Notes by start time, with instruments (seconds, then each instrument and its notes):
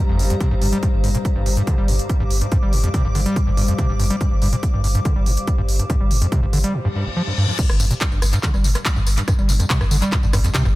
Already playing: synth drone G2 G3, ambient pad G4 C5 F5 A#5
0.09 sub bass G1, acid bass F2
0.19 sub bass G1, acid bass G2, open hi-hat
0.30 acid bass F2, closed hi-hat
0.40 acid bass C3, kick, closed hi-hat
0.51 sub bass G1, acid bass G2
0.62 sub bass G1, acid bass G2, open hi-hat
0.72 acid bass G3, closed hi-hat
0.83 acid bass G2, kick, closed hi-hat
0.94 sub bass G1
1.04 sub bass G1, acid bass G2, open hi-hat
1.15 acid bass A#2, ambient pad D6, closed hi-hat
1.25 kick, closed hi-hat
1.36 sub bass G1, acid bass G2
1.46 sub bass G1, acid bass G2, open hi-hat
1.57 acid bass G2, closed hi-hat
1.67 acid bass D3, kick, closed hi-hat
1.78 sub bass G1, acid bass G3
1.88 sub bass G1, acid bass G2, open hi-hat
1.99 closed hi-hat
2.09 kick, closed hi-hat
2.20 sub bass G1, acid bass G2
2.31 sub bass G1, open hi-hat
2.41 acid bass G2, closed hi-hat
2.52 acid bass G2, kick, closed hi-hat
2.62 sub bass G1, acid bass G3
2.73 sub bass G1, acid bass G2, open hi-hat
2.84 acid bass F2, closed hi-hat
2.94 acid bass C3, kick, closed hi-hat
3.05 sub bass G1, acid bass G2
3.15 sub bass G1, acid bass D3, open hi-hat
3.26 acid bass G3, closed hi-hat
3.36 acid bass G2, kick, closed hi-hat
3.47 sub bass G1, acid bass G2
3.57 sub bass G1, acid bass G2, open hi-hat
3.68 acid bass F2, closed hi-hat
3.78 acid bass C3, kick, closed hi-hat
3.89 sub bass G1, acid bass G2
4.00 sub bass G1, acid bass G2, open hi-hat
4.10 acid bass G3, closed hi-hat
4.21 acid bass G2, kick, closed hi-hat
4.32 sub bass G1
4.42 sub bass G1, acid bass G2, open hi-hat
4.53 acid bass A#2, closed hi-hat
4.63 kick, closed hi-hat
4.74 sub bass G1, acid bass G2
4.84 sub bass G1, acid bass G2, open hi-hat
4.95 acid bass G2, closed hi-hat
5.05 acid bass D3, kick, closed hi-hat
5.16 sub bass G1, acid bass G3
5.26 sub bass G1, acid bass G2, open hi-hat
5.37 closed hi-hat
5.47 kick, closed hi-hat
5.58 sub bass G1, acid bass G2
5.69 sub bass G1, open hi-hat
5.79 acid bass G2, closed hi-hat
5.90 acid bass G2, kick, closed hi-hat
6.00 sub bass G1, acid bass G3
6.11 sub bass G1, acid bass G2, open hi-hat
6.22 acid bass F2, closed hi-hat
6.32 acid bass C3, kick, closed hi-hat
6.43 sub bass G1, acid bass G2
6.53 sub bass G1, acid bass D3, open hi-hat
6.64 acid bass G3, closed hi-hat
6.74 acid bass G2, reverse cymbal
6.85 acid bass G2
6.95 acid bass G2
7.06 acid bass G1
7.16 acid bass F3
7.27 acid bass G2
7.38 acid bass G2
7.48 acid bass G2
7.59 synth drone G2 G3, acid bass G2, kick, closed hi-hat, crash, tambourine
7.70 sub bass G1, cross-stick, tambourine
7.80 sub bass G1, acid bass G2, open hi-hat, tambourine
7.91 acid bass A#2, closed hi-hat, tambourine
8.01 kick, clap, closed hi-hat, tambourine
8.12 sub bass G1, acid bass G2, tambourine
8.22 sub bass G1, acid bass G2, cross-stick, open hi-hat, tambourine
8.33 acid bass G2, closed hi-hat, tambourine
8.43 acid bass D3, kick, clap, closed hi-hat, tambourine
8.54 sub bass G1, acid bass G3, tambourine
8.64 sub bass G1, acid bass G2, open hi-hat, tambourine
8.75 cross-stick, closed hi-hat, tambourine
8.85 kick, clap, closed hi-hat, tambourine
8.96 sub bass G1, acid bass G2, tambourine
9.06 sub bass G1, open hi-hat, tambourine
9.17 acid bass G2, closed hi-hat, tambourine
9.28 acid bass G2, kick, cross-stick, closed hi-hat, tambourine
9.38 sub bass G1, acid bass G3, tambourine
9.49 sub bass G1, acid bass G2, open hi-hat, tambourine
9.60 acid bass F2, closed hi-hat, tambourine
9.70 acid bass C3, kick, clap, closed hi-hat, tambourine
9.81 sub bass G1, acid bass G2, cross-stick, tambourine
9.91 sub bass G1, acid bass D3, open hi-hat, tambourine
10.02 acid bass G3, closed hi-hat, tambourine
10.12 acid bass G2, kick, clap, closed hi-hat, tambourine
10.23 sub bass G1, acid bass G2, tambourine
10.33 sub bass G1, acid bass G2, kick, cross-stick, open hi-hat, tambourine
10.44 acid bass F2, closed hi-hat, tambourine
10.54 acid bass C3, kick, clap, closed hi-hat, tambourine
10.65 sub bass G1, acid bass G2, tambourine